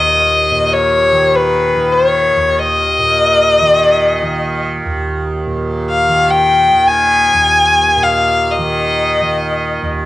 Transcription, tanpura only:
0.00 2.35 D#2 soft
0.00 0.50 A#2 soft
0.00 1.12 D#3 soft
0.51 2.98 A#2 soft
1.12 1.74 D#3 soft
1.74 3.61 D#3 soft
2.36 4.84 D#2 soft
2.99 5.46 A#2 soft
3.61 4.22 D#3 soft
4.22 6.08 D#3 soft
4.85 7.33 D#2 medium
5.46 7.96 A#2 soft
6.08 6.71 D#3 medium
6.71 8.58 D#3 soft
7.33 9.81 D#2 soft
7.96 10.05 A#2 soft
8.58 9.21 D#3 soft
9.21 10.05 D#3 soft
9.82 10.05 D#2 soft

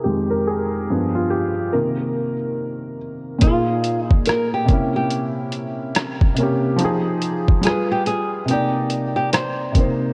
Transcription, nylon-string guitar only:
3.42 4.04 F4 medium
4.04 4.27 D#4 medium
4.27 4.51 A#4 medium
4.54 4.95 G4 medium
4.96 6.34 G4 medium
7.65 7.89 G#4 medium
7.92 8.06 G4 medium
8.07 8.50 G#4 medium
8.51 9.14 G4 loud
9.16 9.33 G4 loud
9.33 10.13 C5 loud

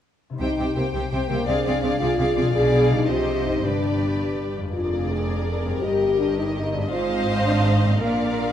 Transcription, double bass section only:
0.40 0.47 C2 soft
0.58 0.65 C2 soft
0.76 0.83 C2 soft
0.94 1.01 C2 soft
1.12 1.19 C2 soft
1.29 1.37 C2 soft
1.48 1.55 C2 soft
1.65 1.72 C2 soft
1.82 1.90 C2 soft
2.00 2.07 C2 soft
2.17 2.25 C2 soft
2.35 2.43 C2 soft
2.54 3.04 B1 soft
3.08 3.62 C2 soft
3.63 4.56 G1 soft
4.74 5.80 F1 soft
5.84 6.89 G1 soft
6.92 7.99 G#1 medium
8.02 8.52 A#1 soft

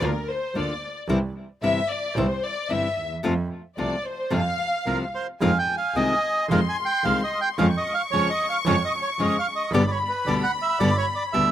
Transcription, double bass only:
0.00 0.23 D2 medium
0.54 0.77 D2 medium
1.08 1.31 C2 loud
1.62 1.85 G1 medium
2.15 2.38 C2 loud
2.69 2.92 G1 medium
2.96 3.23 D#2 medium
3.23 3.46 F2 medium
3.77 4.00 C2 medium
4.31 4.54 F2 medium
4.86 5.09 C2 medium
5.41 5.64 F2 loud
5.94 6.18 C2 medium
6.49 6.72 F2 loud
7.03 7.26 C2 medium
7.57 7.80 F2 loud
8.11 8.34 F2 medium
8.65 8.88 F2 loud
9.18 9.41 F2 medium
9.71 9.94 G1 loud
10.25 10.48 D2 medium
10.79 11.02 G1 loud
11.34 11.52 D2 medium

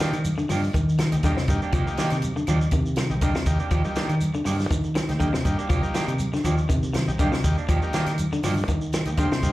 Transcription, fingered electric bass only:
0.13 0.32 D#3 medium
0.50 0.69 G2 medium
0.74 1.14 D#3 medium
1.12 1.31 D#2 medium
1.48 1.58 G2 medium
1.73 1.83 C2 medium
1.98 muted fingered electric bass stroke soft
2.12 2.31 C3 medium
2.48 2.67 D#2 medium
2.72 3.11 C3 loud
3.10 3.29 C2 medium
3.46 3.57 D#2 medium
3.71 3.82 D#2 medium
3.97 muted fingered electric bass stroke soft
4.09 4.29 D#3 medium
4.46 4.65 G2 medium
4.71 5.10 D#3 medium
5.09 5.28 D#2 medium
5.45 5.55 G2 medium
5.70 5.80 C2 medium
5.95 muted fingered electric bass stroke soft
6.08 6.27 C3 medium
6.44 6.64 D#2 medium
6.70 7.09 C3 medium
7.07 7.27 C2 medium
7.44 7.54 D#2 medium
7.69 7.79 D#2 medium
7.94 muted fingered electric bass stroke soft
8.06 8.26 D#3 medium
8.43 8.62 G2 medium
8.68 9.07 D#3 loud
9.06 9.25 D#2 medium
9.43 9.52 G2 medium

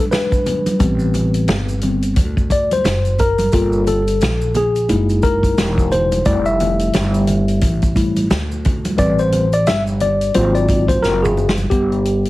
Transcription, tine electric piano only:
0.00 0.75 F#3 medium
0.00 0.76 G#3 soft
0.00 0.76 D4 medium
0.11 1.78 B4 medium
0.79 1.78 G3 medium
0.79 1.78 B3 soft
0.79 1.78 C4 medium
1.82 2.13 G3 soft
1.82 2.13 B3 soft
1.82 2.13 C4 medium
2.52 2.70 D5 medium
2.73 3.21 C5 medium
3.20 3.83 A#4 medium
3.53 4.01 A#3 soft
3.53 4.01 F4 medium
3.53 3.86 A4 medium
3.88 4.57 A4 medium
4.57 5.26 G#4 medium
4.89 6.21 G#3 medium
4.89 6.21 A#3 soft
4.89 6.22 D#4 medium
4.89 6.22 E4 medium
5.23 5.93 A#4 medium
5.92 6.27 C5 medium
6.25 7.94 G3 medium
6.25 7.94 A3 soft
6.25 7.95 E4 medium
6.25 6.45 D5 loud
6.46 8.12 E5 medium
7.95 8.26 G3 soft
7.95 8.26 A3 soft
7.95 8.27 E4 medium
8.97 9.45 G3 medium
8.97 9.46 C4 medium
8.97 9.46 B4 medium
8.97 9.19 D5 loud
9.19 9.54 C5 medium
9.54 9.67 D5 loud
9.67 9.82 E5 loud
10.02 10.36 D5 medium
10.35 11.33 F#3 medium
10.35 11.33 A#3 soft
10.35 11.33 C4 medium
10.35 11.33 F4 medium
10.35 10.56 C5 medium
10.55 10.86 D5 medium
10.88 11.03 C5 medium
11.02 11.24 A#4 medium
11.23 11.55 G#4 medium
11.70 12.30 B3 medium
11.70 12.30 G4 medium

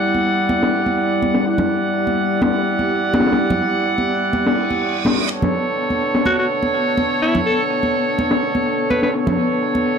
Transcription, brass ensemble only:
0.00 1.43 E4 medium
0.00 1.43 G4 medium
0.00 1.43 D5 medium
0.00 1.43 F#5 medium
1.46 5.13 E4 medium
1.46 5.13 G4 medium
1.46 5.13 D5 medium
1.46 5.13 F#5 medium
5.30 9.11 B3 medium
5.30 9.11 D4 medium
5.30 9.11 A4 medium
5.30 9.11 C#5 medium
9.14 9.98 B3 medium
9.14 9.98 D4 medium
9.14 9.98 A4 medium
9.14 9.98 C#5 medium

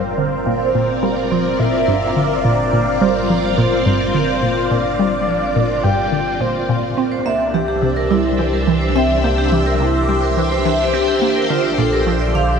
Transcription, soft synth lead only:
0.18 1.04 C5 medium
1.03 1.32 A#4 medium
1.31 1.61 C5 medium
1.59 2.44 E5 loud
2.44 3.03 D5 loud
3.01 3.30 C5 medium
3.29 3.59 A#4 medium
3.57 3.85 C5 loud
3.86 4.72 C5 loud
4.71 5.83 D5 loud
5.84 6.42 G5 loud
6.41 6.97 C5 loud

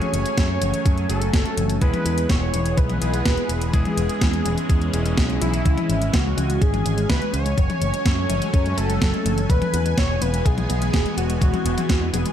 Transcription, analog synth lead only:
0.00 1.09 C#5 loud
1.09 1.77 A4 loud
1.81 2.31 B4 loud
2.29 2.79 C#5 loud
2.77 3.73 B4 loud
3.73 5.13 G#4 loud
5.41 6.15 E4 loud
6.13 6.63 F#4 loud
6.61 7.09 G#4 loud
7.09 7.32 B4 loud
7.33 8.79 C#5 loud
8.77 9.51 A4 loud
9.49 9.97 B4 loud
9.98 10.23 C#5 loud
10.22 10.47 B4 loud
10.46 11.17 G#4 loud
11.18 12.15 F#4 loud
12.14 12.32 G#4 medium

